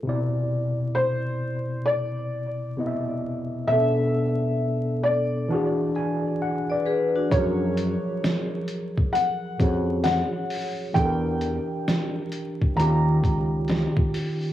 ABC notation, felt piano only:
X:1
M:4/4
L:1/8
Q:"Swing 16ths" 1/4=66
K:Clyd
V:1 name="Felt piano"
z2 c2 d4 | e3 d2 z3 | ^c4 f2 f2 | g4 ^a3 z |]